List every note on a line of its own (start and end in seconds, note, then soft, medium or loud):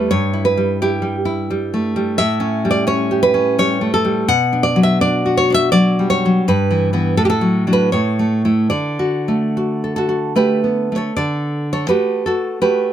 0.00 0.12 G3 medium
0.00 0.11 A3 medium
0.11 2.16 G2 medium
0.11 0.44 C#5 loud
0.33 0.81 E4 medium
0.45 0.79 B4 loud
0.57 1.01 G3 medium
0.82 1.24 E4 medium
0.82 1.15 G4 loud
1.02 1.49 G3 medium
1.25 2.18 E4 medium
1.50 1.95 G3 medium
1.74 2.20 A3 medium
1.96 2.19 G3 medium
2.18 4.23 A2 medium
2.18 2.68 E5 loud
2.40 2.86 C#4 medium
2.65 3.57 G3 medium
2.71 2.87 D5 loud
2.87 3.33 C#4 medium
2.87 3.22 C#5 loud
3.11 4.15 G4 medium
3.23 3.56 B4 loud
3.34 3.81 C#4 medium
3.58 4.03 G3 medium
3.58 3.92 C#5 loud
3.81 4.28 A3 medium
3.94 4.27 A4 loud
4.05 4.28 G3 medium
4.28 6.42 B2 loud
4.28 4.62 F#5 loud
4.53 5.00 D4 medium
4.63 4.81 D5 loud
4.76 5.71 F#3 medium
4.83 5.00 E5 loud
5.01 5.49 D4 medium
5.01 5.35 D5 loud
5.26 6.35 F#4 medium
5.37 5.54 C#5 loud
5.50 6.47 D4 medium
5.54 5.71 E5 loud
5.72 6.24 F#3 medium
5.72 6.07 D5 loud
5.99 6.46 G3 medium
6.10 6.44 C#5 loud
6.25 6.47 F#3 medium
6.48 7.17 G2 medium
6.48 7.16 B4 loud
6.71 6.92 E3 medium
6.93 7.15 E3 medium
6.93 7.15 B3 medium
7.17 7.90 A2 medium
7.17 7.24 A4 loud
7.25 7.29 G4 medium
7.30 7.70 A4 loud
7.41 7.66 F#3 medium
7.67 7.90 F#3 medium
7.67 7.90 D4 medium
7.73 7.92 B4 loud
7.92 8.70 A2 medium
7.92 8.68 C#5 loud
8.19 8.44 A3 medium
8.45 8.69 A3 soft
8.45 8.69 E4 medium
8.70 11.10 D3 medium
8.70 10.36 D5 loud
8.99 9.56 F#4 medium
9.28 10.34 A3 medium
9.57 9.97 F#4 medium
9.84 9.95 A4 medium
9.96 10.08 F#4 medium
9.96 10.34 A4 medium
10.09 11.14 F#4 medium
10.36 10.91 A3 medium
10.36 10.63 G4 medium
10.36 10.93 B4 medium
10.64 10.97 B3 soft
10.92 11.16 A3 medium
10.92 11.15 C#5 medium
10.97 11.14 A4 medium
11.16 11.87 D3 medium
11.16 11.68 A4 medium
11.16 11.69 D5 loud
11.73 11.89 A4 medium
11.73 11.88 C#5 medium
11.89 12.60 A3 soft
11.89 12.25 F#4 medium
11.89 12.23 G4 medium
11.89 12.24 B4 medium
12.26 12.60 F#4 medium
12.26 12.60 A4 medium
12.62 12.93 A3 medium
12.62 12.93 F#4 medium
12.62 12.93 G4 medium
12.62 12.93 B4 medium